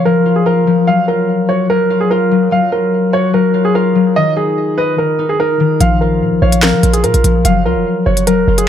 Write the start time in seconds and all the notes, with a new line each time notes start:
Already playing: F4 F5
0.05 F3 A#4
0.26 F4
0.36 G#4
0.46 F4 A#4
0.67 F3
0.87 F#3 F5
1.08 F4 A#4
1.49 F#4 C#5
1.70 F#3 A#4
1.90 F4
2.01 G#4
2.11 F4 A#4
2.31 F#3
2.51 F#3 F5
2.72 F4 A#4
3.13 F#4 C#5
3.33 F#3 A#4
3.54 F4
3.65 G#4
3.75 F4 A#4
3.95 F#3
4.16 D#3 D#5
4.36 D#4 G#4
4.78 B4 D#5
4.98 D#3 A#4
5.19 D#4
5.29 G#4
5.40 D#4 A#4
5.60 D#3
5.80 A#1 F3 F5, closed hi-hat
6.01 F4 A#4
6.22 A#2
6.32 A#1
6.42 A#1 C#5 F5
6.52 closed hi-hat
6.62 F3 A#4, snare, clap, closed hi-hat
6.73 F3
6.83 A#1 F4, closed hi-hat
6.93 G#4, closed hi-hat
7.03 A#2 F4 A#4, closed hi-hat
7.14 A#1, closed hi-hat
7.24 A#1 F3, closed hi-hat
7.45 F#1 F#3 F5, closed hi-hat
7.65 C#2 F4 A#4
7.76 F#1
8.06 F#1 F#4 C#5
8.17 closed hi-hat
8.27 F#3 A#4, closed hi-hat
8.37 F1
8.48 F#1 F4
8.58 G#4, closed hi-hat